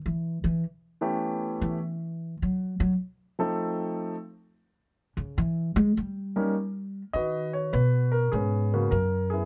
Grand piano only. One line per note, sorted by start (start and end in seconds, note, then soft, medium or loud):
1.01 1.77 E3 medium
1.01 1.77 A3 medium
1.01 1.77 B3 medium
1.01 1.77 C#4 medium
1.01 1.77 G4 medium
3.39 4.14 F3 medium
3.39 4.14 A3 medium
3.39 4.14 C4 medium
3.39 4.14 D#4 medium
3.39 4.14 A4 medium
6.36 6.53 G3 medium
6.36 6.53 A#3 medium
6.36 6.53 C#4 medium
6.36 6.53 D#4 medium
6.36 6.53 A#4 medium
7.13 8.29 F#4 medium
7.13 7.71 B4 medium
7.13 7.51 D#5 medium
7.53 7.73 C#5 medium
7.73 8.14 B4 medium
8.12 8.30 A#4 medium
8.32 8.72 B3 medium
8.32 9.45 C#4 medium
8.32 8.93 G#4 medium
8.73 8.90 C#3 medium
8.73 8.90 A#3 medium
8.73 8.90 B3 medium
8.73 8.90 F#4 medium
8.91 9.32 A#4 medium
9.30 9.45 B3 soft
9.30 9.45 E4 medium
9.30 9.45 G#4 medium